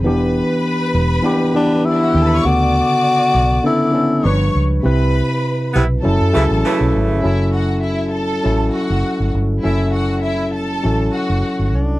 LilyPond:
<<
  \new Staff \with { instrumentName = "String section" } { \time 4/4 \key fis \phrygian \tempo 4 = 100 <b' b''>2. r32 <d' d''>32 <e' e''>32 <fis' fis''>32 <g' g''>32 <a' a''>32 <b' b''>32 <cis'' cis'''>32 | <d'' d'''>2~ <d'' d'''>8 r8 <cis'' cis'''>8 r8 | <b' b''>4. r8 <a' a''>4. r8 | <e' e''>8 <fis' fis''>8 <e' e''>8 <a' a''>4 <fis' fis''>4 r8 |
<e' e''>8 <fis' fis''>8 <e' e''>8 <a' a''>4 <fis' fis''>4 r8 | }
  \new Staff \with { instrumentName = "Tenor saxophone" } { \time 4/4 \key fis \phrygian r2 r8 d'8 e'4 | fis'2 e'4. r8 | r1 | r1 |
r2. r8 d'8 | }
  \new Staff \with { instrumentName = "Tine electric piano" } { \time 4/4 \key fis \phrygian <e b d' g'>4. r8 <e b d' g'>8 <e b d' g'>4 r8 | <cis d b a'>4. r8 <d b cis' a'>8 <d b cis' a'>8 <f g d' b'>4 | <c c' e' b'>4. r8 <fis cis' e' a'>8 <fis cis' e' gis' a'>4 r8 | <fis cis' e' a'>4. r8 <fis cis' e' a'>4. r8 |
<fis cis' e' a'>4. r8 <fis cis' e' a'>4. r8 | }
  \new Staff \with { instrumentName = "Horn section" } { \clef bass \time 4/4 \key fis \phrygian r1 | r1 | r4. <c e b e'>16 r8. <cis e a e'>16 r16 <cis e a e'>4 | r1 |
r1 | }
  \new Staff \with { instrumentName = "Fingered electric bass" } { \clef bass \time 4/4 \key fis \phrygian e,,8. r8. e,,8 r4. dis,8 | d,8. r8. b,,8 r4 g,,8 cis,8 | c,8. r8. b,,8 fis,,16 fis,16 cis,16 a,,16 r16 b,,16 gis,,16 g,,16 | fis,,2 a,,8 r16 fis,,16 r16 g,,16 g,,8 |
fis,,2 a,,8 r16 fis,,16 r16 g,,16 c,8 | }
>>